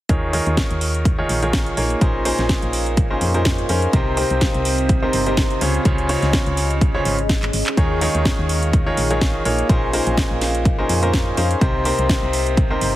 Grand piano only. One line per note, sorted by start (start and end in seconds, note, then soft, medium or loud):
0.09 0.31 D#3 medium
0.09 0.31 D#4 medium
0.09 0.31 F4 medium
0.09 0.31 G#4 medium
0.09 0.31 A#4 medium
0.09 0.31 C#5 medium
0.33 1.15 D#3 medium
0.33 1.15 D#4 medium
0.33 1.15 F4 medium
0.33 1.15 G#4 medium
0.33 1.15 A#4 medium
0.33 1.15 C#5 medium
1.18 1.39 D#3 medium
1.18 1.39 D#4 medium
1.18 1.39 F4 medium
1.18 1.39 G#4 medium
1.18 1.39 A#4 medium
1.18 1.39 C#5 medium
1.42 1.75 D#3 medium
1.42 1.75 D#4 medium
1.42 1.75 F4 medium
1.42 1.75 G#4 medium
1.42 1.75 A#4 medium
1.42 1.75 C#5 medium
1.77 1.99 A#3 medium
1.77 1.99 D#4 medium
1.77 1.99 F4 medium
1.77 1.99 G#4 medium
1.77 1.99 A#4 medium
1.77 1.99 C#5 medium
2.01 2.23 A#2 medium
2.01 2.23 C#4 medium
2.01 2.23 D#4 medium
2.01 2.23 G#4 medium
2.01 2.23 A#4 medium
2.01 2.23 C5 medium
2.25 3.07 A#2 medium
2.25 3.07 C#4 medium
2.25 3.07 D#4 medium
2.25 3.07 G#4 medium
2.25 3.07 A#4 medium
2.25 3.07 C5 loud
3.10 3.31 A#2 medium
3.10 3.31 C#4 medium
3.10 3.31 D#4 medium
3.10 3.31 G#4 medium
3.10 3.31 A#4 medium
3.10 3.31 C5 medium
3.34 3.67 A#2 medium
3.34 3.67 C#4 medium
3.34 3.67 D#4 medium
3.34 3.67 G#4 medium
3.34 3.67 A#4 medium
3.34 3.67 C5 medium
3.69 3.91 C#4 medium
3.69 3.91 D#4 medium
3.69 3.91 G#4 medium
3.69 3.91 A#4 medium
3.69 3.91 C5 medium
3.93 4.15 C3 medium
3.93 4.15 C4 medium
3.93 4.15 D#4 medium
3.93 4.15 G4 medium
3.93 4.15 A#4 medium
3.93 4.15 C5 loud
4.17 4.99 C3 medium
4.17 4.99 C4 medium
4.17 4.99 D#4 medium
4.17 4.99 G4 medium
4.17 4.99 A#4 medium
4.17 4.99 C5 loud
5.02 5.23 C3 medium
5.02 5.23 C4 medium
5.02 5.23 D#4 medium
5.02 5.23 G4 medium
5.02 5.23 A#4 medium
5.02 5.23 C5 medium
5.26 5.59 C3 medium
5.26 5.59 C4 medium
5.26 5.59 D#4 medium
5.26 5.59 G4 medium
5.26 5.59 A#4 medium
5.26 5.59 C5 medium
5.61 5.83 C#3 medium
5.61 5.83 C#4 medium
5.61 5.83 F4 medium
5.61 5.83 G#4 medium
5.61 5.83 C5 medium
5.61 5.83 C#5 medium
5.85 6.07 C#3 medium
5.85 6.07 C#4 medium
5.85 6.07 F4 medium
5.85 6.07 G#4 medium
5.85 6.07 C5 medium
5.85 6.07 C#5 medium
6.09 6.91 C#3 loud
6.09 6.91 C#4 medium
6.09 6.91 F4 medium
6.09 6.91 G#4 medium
6.09 6.91 C5 medium
6.09 6.91 C#5 loud
6.94 7.15 C#3 medium
6.94 7.15 C#4 medium
6.94 7.15 F4 medium
6.94 7.15 G#4 medium
6.94 7.15 C5 medium
6.94 7.15 C#5 medium
7.77 7.99 D#3 medium
7.77 7.99 D#4 medium
7.77 7.99 F4 medium
7.77 7.99 G#4 medium
7.77 7.99 A#4 medium
7.77 7.99 C#5 loud
8.01 8.83 D#3 medium
8.01 8.83 D#4 medium
8.01 8.83 F4 medium
8.01 8.83 G#4 medium
8.01 8.83 A#4 medium
8.01 8.83 C#5 loud
8.86 9.07 D#3 medium
8.86 9.07 D#4 medium
8.86 9.07 F4 medium
8.86 9.07 G#4 medium
8.86 9.07 A#4 medium
8.86 9.07 C#5 medium
9.10 9.43 D#3 medium
9.10 9.43 D#4 medium
9.10 9.43 F4 medium
9.10 9.43 G#4 medium
9.10 9.43 A#4 medium
9.10 9.43 C#5 medium
9.45 9.67 A#3 medium
9.45 9.67 D#4 medium
9.45 9.67 F4 medium
9.45 9.67 G#4 medium
9.45 9.67 A#4 medium
9.45 9.67 C#5 medium
9.69 9.91 A#2 medium
9.69 9.91 C#4 medium
9.69 9.91 D#4 medium
9.69 9.91 G#4 medium
9.69 9.91 A#4 medium
9.69 9.91 C5 loud
9.93 10.75 A#2 medium
9.93 10.75 C#4 medium
9.93 10.75 D#4 medium
9.93 10.75 G#4 medium
9.93 10.75 A#4 medium
9.93 10.75 C5 loud
10.78 10.99 A#2 medium
10.78 10.99 C#4 medium
10.78 10.99 D#4 medium
10.78 10.99 G#4 medium
10.78 10.99 A#4 medium
10.78 10.99 C5 medium
11.03 11.35 A#2 medium
11.03 11.35 C#4 medium
11.03 11.35 D#4 medium
11.03 11.35 G#4 medium
11.03 11.35 A#4 medium
11.03 11.35 C5 medium
11.37 11.59 C#4 medium
11.37 11.59 D#4 medium
11.37 11.59 G#4 medium
11.37 11.59 A#4 medium
11.37 11.59 C5 medium
11.61 11.83 C3 medium
11.61 11.83 C4 medium
11.61 11.83 D#4 medium
11.61 11.83 G4 medium
11.61 11.83 A#4 medium
11.61 11.83 C5 loud
11.85 12.67 C3 medium
11.85 12.67 C4 medium
11.85 12.67 D#4 medium
11.85 12.67 G4 medium
11.85 12.67 A#4 medium
11.85 12.67 C5 loud
12.70 12.91 C3 medium
12.70 12.91 C4 medium
12.70 12.91 D#4 medium
12.70 12.91 G4 medium
12.70 12.91 A#4 medium
12.70 12.91 C5 medium